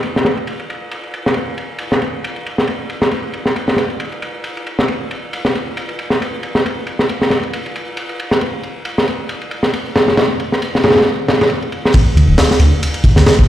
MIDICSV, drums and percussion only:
0, 0, Header, 1, 2, 480
1, 0, Start_track
1, 0, Tempo, 441176
1, 1473, Time_signature, 4, 2, 24, 8
1, 14666, End_track
2, 0, Start_track
2, 0, Title_t, "Drums"
2, 29, Note_on_c, 9, 51, 83
2, 138, Note_off_c, 9, 51, 0
2, 176, Note_on_c, 9, 38, 39
2, 269, Note_off_c, 9, 38, 0
2, 269, Note_on_c, 9, 38, 39
2, 285, Note_on_c, 9, 51, 60
2, 378, Note_off_c, 9, 38, 0
2, 393, Note_off_c, 9, 51, 0
2, 406, Note_on_c, 9, 51, 44
2, 512, Note_off_c, 9, 51, 0
2, 512, Note_on_c, 9, 51, 86
2, 621, Note_off_c, 9, 51, 0
2, 647, Note_on_c, 9, 51, 43
2, 756, Note_off_c, 9, 51, 0
2, 760, Note_on_c, 9, 51, 67
2, 868, Note_off_c, 9, 51, 0
2, 993, Note_on_c, 9, 51, 84
2, 1102, Note_off_c, 9, 51, 0
2, 1125, Note_on_c, 9, 51, 40
2, 1234, Note_off_c, 9, 51, 0
2, 1236, Note_on_c, 9, 51, 64
2, 1345, Note_off_c, 9, 51, 0
2, 1374, Note_on_c, 9, 38, 49
2, 1458, Note_on_c, 9, 51, 84
2, 1483, Note_off_c, 9, 38, 0
2, 1567, Note_off_c, 9, 51, 0
2, 1714, Note_on_c, 9, 51, 67
2, 1823, Note_off_c, 9, 51, 0
2, 1942, Note_on_c, 9, 51, 90
2, 2050, Note_off_c, 9, 51, 0
2, 2087, Note_on_c, 9, 38, 46
2, 2195, Note_off_c, 9, 38, 0
2, 2195, Note_on_c, 9, 51, 62
2, 2304, Note_off_c, 9, 51, 0
2, 2440, Note_on_c, 9, 51, 91
2, 2549, Note_off_c, 9, 51, 0
2, 2568, Note_on_c, 9, 51, 43
2, 2677, Note_off_c, 9, 51, 0
2, 2680, Note_on_c, 9, 51, 72
2, 2789, Note_off_c, 9, 51, 0
2, 2810, Note_on_c, 9, 38, 40
2, 2908, Note_on_c, 9, 51, 78
2, 2919, Note_off_c, 9, 38, 0
2, 3017, Note_off_c, 9, 51, 0
2, 3150, Note_on_c, 9, 51, 71
2, 3259, Note_off_c, 9, 51, 0
2, 3282, Note_on_c, 9, 38, 54
2, 3387, Note_on_c, 9, 51, 87
2, 3391, Note_off_c, 9, 38, 0
2, 3496, Note_off_c, 9, 51, 0
2, 3628, Note_on_c, 9, 51, 65
2, 3737, Note_off_c, 9, 51, 0
2, 3760, Note_on_c, 9, 38, 37
2, 3869, Note_off_c, 9, 38, 0
2, 3873, Note_on_c, 9, 51, 79
2, 3982, Note_off_c, 9, 51, 0
2, 4002, Note_on_c, 9, 38, 37
2, 4097, Note_off_c, 9, 38, 0
2, 4097, Note_on_c, 9, 38, 36
2, 4112, Note_on_c, 9, 51, 71
2, 4205, Note_off_c, 9, 38, 0
2, 4221, Note_off_c, 9, 51, 0
2, 4242, Note_on_c, 9, 51, 41
2, 4349, Note_off_c, 9, 51, 0
2, 4349, Note_on_c, 9, 51, 82
2, 4458, Note_off_c, 9, 51, 0
2, 4483, Note_on_c, 9, 51, 45
2, 4591, Note_off_c, 9, 51, 0
2, 4593, Note_on_c, 9, 51, 69
2, 4702, Note_off_c, 9, 51, 0
2, 4828, Note_on_c, 9, 51, 85
2, 4937, Note_off_c, 9, 51, 0
2, 4972, Note_on_c, 9, 51, 43
2, 5076, Note_off_c, 9, 51, 0
2, 5076, Note_on_c, 9, 51, 63
2, 5184, Note_off_c, 9, 51, 0
2, 5208, Note_on_c, 9, 38, 51
2, 5311, Note_on_c, 9, 51, 85
2, 5317, Note_off_c, 9, 38, 0
2, 5420, Note_off_c, 9, 51, 0
2, 5557, Note_on_c, 9, 51, 67
2, 5666, Note_off_c, 9, 51, 0
2, 5799, Note_on_c, 9, 51, 93
2, 5908, Note_off_c, 9, 51, 0
2, 5927, Note_on_c, 9, 38, 43
2, 6036, Note_off_c, 9, 38, 0
2, 6041, Note_on_c, 9, 51, 66
2, 6150, Note_off_c, 9, 51, 0
2, 6276, Note_on_c, 9, 51, 92
2, 6385, Note_off_c, 9, 51, 0
2, 6405, Note_on_c, 9, 51, 42
2, 6514, Note_off_c, 9, 51, 0
2, 6514, Note_on_c, 9, 51, 65
2, 6623, Note_off_c, 9, 51, 0
2, 6641, Note_on_c, 9, 38, 38
2, 6749, Note_off_c, 9, 38, 0
2, 6765, Note_on_c, 9, 51, 84
2, 6874, Note_off_c, 9, 51, 0
2, 6995, Note_on_c, 9, 51, 63
2, 7103, Note_off_c, 9, 51, 0
2, 7127, Note_on_c, 9, 38, 49
2, 7235, Note_off_c, 9, 38, 0
2, 7243, Note_on_c, 9, 51, 80
2, 7352, Note_off_c, 9, 51, 0
2, 7470, Note_on_c, 9, 51, 71
2, 7578, Note_off_c, 9, 51, 0
2, 7607, Note_on_c, 9, 38, 39
2, 7716, Note_off_c, 9, 38, 0
2, 7717, Note_on_c, 9, 51, 81
2, 7825, Note_off_c, 9, 51, 0
2, 7850, Note_on_c, 9, 38, 41
2, 7947, Note_off_c, 9, 38, 0
2, 7947, Note_on_c, 9, 38, 37
2, 7954, Note_on_c, 9, 51, 72
2, 8055, Note_off_c, 9, 38, 0
2, 8063, Note_off_c, 9, 51, 0
2, 8086, Note_on_c, 9, 51, 43
2, 8195, Note_off_c, 9, 51, 0
2, 8196, Note_on_c, 9, 51, 85
2, 8305, Note_off_c, 9, 51, 0
2, 8333, Note_on_c, 9, 51, 45
2, 8438, Note_off_c, 9, 51, 0
2, 8438, Note_on_c, 9, 51, 70
2, 8546, Note_off_c, 9, 51, 0
2, 8670, Note_on_c, 9, 51, 82
2, 8779, Note_off_c, 9, 51, 0
2, 8803, Note_on_c, 9, 51, 42
2, 8911, Note_off_c, 9, 51, 0
2, 8916, Note_on_c, 9, 51, 70
2, 9025, Note_off_c, 9, 51, 0
2, 9045, Note_on_c, 9, 38, 52
2, 9150, Note_on_c, 9, 51, 89
2, 9154, Note_off_c, 9, 38, 0
2, 9259, Note_off_c, 9, 51, 0
2, 9393, Note_on_c, 9, 51, 61
2, 9502, Note_off_c, 9, 51, 0
2, 9628, Note_on_c, 9, 51, 82
2, 9737, Note_off_c, 9, 51, 0
2, 9772, Note_on_c, 9, 38, 49
2, 9874, Note_on_c, 9, 51, 70
2, 9880, Note_off_c, 9, 38, 0
2, 9983, Note_off_c, 9, 51, 0
2, 10108, Note_on_c, 9, 51, 78
2, 10217, Note_off_c, 9, 51, 0
2, 10243, Note_on_c, 9, 51, 41
2, 10347, Note_off_c, 9, 51, 0
2, 10347, Note_on_c, 9, 51, 63
2, 10456, Note_off_c, 9, 51, 0
2, 10476, Note_on_c, 9, 38, 41
2, 10584, Note_off_c, 9, 38, 0
2, 10591, Note_on_c, 9, 51, 91
2, 10700, Note_off_c, 9, 51, 0
2, 10832, Note_on_c, 9, 38, 97
2, 10833, Note_on_c, 9, 51, 73
2, 10941, Note_off_c, 9, 38, 0
2, 10941, Note_off_c, 9, 51, 0
2, 10967, Note_on_c, 9, 38, 53
2, 11069, Note_off_c, 9, 38, 0
2, 11069, Note_on_c, 9, 38, 109
2, 11071, Note_on_c, 9, 51, 76
2, 11178, Note_off_c, 9, 38, 0
2, 11179, Note_off_c, 9, 51, 0
2, 11311, Note_on_c, 9, 51, 68
2, 11420, Note_off_c, 9, 51, 0
2, 11450, Note_on_c, 9, 38, 33
2, 11553, Note_on_c, 9, 51, 90
2, 11559, Note_off_c, 9, 38, 0
2, 11662, Note_off_c, 9, 51, 0
2, 11696, Note_on_c, 9, 38, 41
2, 11787, Note_on_c, 9, 51, 67
2, 11794, Note_off_c, 9, 38, 0
2, 11794, Note_on_c, 9, 38, 92
2, 11864, Note_off_c, 9, 38, 0
2, 11864, Note_off_c, 9, 51, 0
2, 11864, Note_on_c, 9, 38, 95
2, 11864, Note_on_c, 9, 51, 60
2, 11924, Note_off_c, 9, 38, 0
2, 11924, Note_on_c, 9, 38, 91
2, 11928, Note_off_c, 9, 51, 0
2, 11928, Note_on_c, 9, 51, 66
2, 11981, Note_off_c, 9, 38, 0
2, 11981, Note_on_c, 9, 38, 83
2, 11990, Note_off_c, 9, 51, 0
2, 11990, Note_on_c, 9, 51, 61
2, 12090, Note_off_c, 9, 38, 0
2, 12098, Note_off_c, 9, 51, 0
2, 12277, Note_on_c, 9, 38, 111
2, 12279, Note_on_c, 9, 51, 75
2, 12386, Note_off_c, 9, 38, 0
2, 12388, Note_off_c, 9, 51, 0
2, 12413, Note_on_c, 9, 51, 70
2, 12418, Note_on_c, 9, 38, 100
2, 12507, Note_off_c, 9, 51, 0
2, 12507, Note_on_c, 9, 51, 80
2, 12526, Note_off_c, 9, 38, 0
2, 12616, Note_off_c, 9, 51, 0
2, 12646, Note_on_c, 9, 51, 42
2, 12752, Note_off_c, 9, 51, 0
2, 12752, Note_on_c, 9, 51, 61
2, 12861, Note_off_c, 9, 51, 0
2, 12898, Note_on_c, 9, 38, 50
2, 12990, Note_on_c, 9, 51, 93
2, 12993, Note_on_c, 9, 36, 102
2, 13006, Note_off_c, 9, 38, 0
2, 13099, Note_off_c, 9, 51, 0
2, 13101, Note_off_c, 9, 36, 0
2, 13240, Note_on_c, 9, 51, 74
2, 13349, Note_off_c, 9, 51, 0
2, 13469, Note_on_c, 9, 38, 120
2, 13476, Note_on_c, 9, 51, 92
2, 13578, Note_off_c, 9, 38, 0
2, 13585, Note_off_c, 9, 51, 0
2, 13611, Note_on_c, 9, 38, 47
2, 13704, Note_on_c, 9, 51, 76
2, 13720, Note_off_c, 9, 38, 0
2, 13813, Note_off_c, 9, 51, 0
2, 13955, Note_on_c, 9, 51, 85
2, 14064, Note_off_c, 9, 51, 0
2, 14079, Note_on_c, 9, 51, 45
2, 14186, Note_on_c, 9, 36, 94
2, 14187, Note_off_c, 9, 51, 0
2, 14188, Note_on_c, 9, 51, 73
2, 14295, Note_off_c, 9, 36, 0
2, 14297, Note_off_c, 9, 51, 0
2, 14320, Note_on_c, 9, 38, 43
2, 14429, Note_off_c, 9, 38, 0
2, 14432, Note_on_c, 9, 38, 116
2, 14432, Note_on_c, 9, 51, 82
2, 14541, Note_off_c, 9, 38, 0
2, 14541, Note_off_c, 9, 51, 0
2, 14567, Note_on_c, 9, 36, 96
2, 14666, Note_off_c, 9, 36, 0
2, 14666, End_track
0, 0, End_of_file